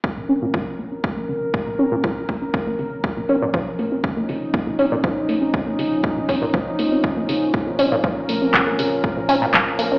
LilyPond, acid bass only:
\new Staff \with { instrumentName = "Acid bass" } { \clef bass \time 4/4 \key bes \minor \tempo 4 = 120 bes,16 bes,16 des'16 bes,16 f16 r16 bes16 des'16 bes,16 bes16 des16 r16 bes,16 bes,16 des'16 bes,16 | f16 r16 bes16 des'16 bes,16 bes16 des16 r16 bes,16 bes,16 des'16 bes,16 f16 r16 bes16 des'16 | bes,16 bes16 des16 r16 bes,16 bes,16 des'16 bes,16 f16 r16 bes16 des'16 bes,16 bes16 des16 r16 | bes,16 bes,16 des'16 bes,16 f16 r16 bes16 des'16 bes,16 bes16 des16 r16 bes,16 bes,16 des'16 bes,16 |
f16 r16 bes16 des'16 bes,16 bes16 des16 r16 bes,16 bes,16 des'16 bes,16 f16 r16 bes16 des'16 | }